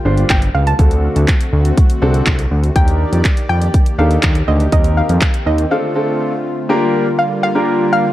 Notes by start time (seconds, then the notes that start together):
Already playing: D3 G3 A#3 F4 G5
0.05 G1 D4 F4 G4 C5
0.18 closed hi-hat
0.30 G1 G5, kick, clap, closed hi-hat
0.42 closed hi-hat
0.55 C#2 F5
0.67 A5, closed hi-hat
0.79 D2 D3 A3 C4 D4 F#4 A4, kick, closed hi-hat
0.91 closed hi-hat
1.16 D2, closed hi-hat
1.28 kick, clap, closed hi-hat
1.41 closed hi-hat
1.53 D2
1.65 closed hi-hat
1.78 kick, closed hi-hat
1.90 closed hi-hat
2.02 C2 C4 D4 F#4 A4
2.14 closed hi-hat
2.27 C2, kick, clap, closed hi-hat
2.39 closed hi-hat
2.51 D2
2.64 closed hi-hat
2.76 D#2 D#3 A#3 D4 D#4 G4 A#4 D5 G5, kick, closed hi-hat
2.88 closed hi-hat
3.13 F2, closed hi-hat
3.25 kick, clap, closed hi-hat
3.37 closed hi-hat
3.49 F2 G5
3.62 closed hi-hat
3.74 kick, closed hi-hat
3.86 closed hi-hat
3.98 D#2 D4 D#4 G4 A4 F5
4.11 closed hi-hat
4.23 D#2, kick, clap, closed hi-hat
4.35 closed hi-hat
4.48 D2 D#5
4.60 closed hi-hat
4.72 D#2 C4 D#4 G4 A#4 D#5, kick, closed hi-hat
4.84 closed hi-hat
4.97 F5
5.09 F2, closed hi-hat
5.21 kick, clap, closed hi-hat
5.34 closed hi-hat
5.46 D#2 D#5
5.58 closed hi-hat
5.71 D3 A3 C4 D4 F4 A4 F5
5.95 C4 D4 F4 A4
6.69 D3 G3 A#3 D4 F4 G4 A#4
7.19 F5
7.43 G4 A#4 F5
7.55 A#3 D4 F4 G4 A#4
7.93 F5